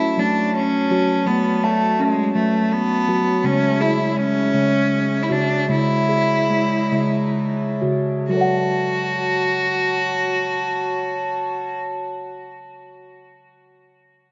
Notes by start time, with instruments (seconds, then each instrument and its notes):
Already playing: steel tongue drum C#4 A4, cello E4, glass harmonica F#4 C#5 A5
0.18 steel tongue drum F#3 A3, cello D4
0.56 cello C#4
0.91 steel tongue drum F#3 F#4
1.26 steel tongue drum F#3 A3, cello B3
1.64 cello A3, steel tongue drum A5
2.00 cello G#3, steel tongue drum C#4
2.35 steel tongue drum F#3 A3, cello A3
2.72 cello B3
3.08 steel tongue drum F#3 F#4
3.44 steel tongue drum C#3 G#3, cello C#4, glass harmonica G#4 C#5 E5
3.81 cello E4, steel tongue drum G#4
4.16 steel tongue drum G#3, cello C#4
4.54 steel tongue drum C#3 G#3
5.23 cello E4
5.30 steel tongue drum C#3 F#4, cello D4
5.69 steel tongue drum C#3 G#3, cello E4
6.09 steel tongue drum G#4
6.50 steel tongue drum G#3
6.92 steel tongue drum C#3 G#3
7.82 steel tongue drum C#3 F#4
8.28 steel tongue drum F#3 F#4, glass harmonica F#4 C#5 A5, cello F#4
8.33 steel tongue drum A4 C#5
8.41 steel tongue drum F#5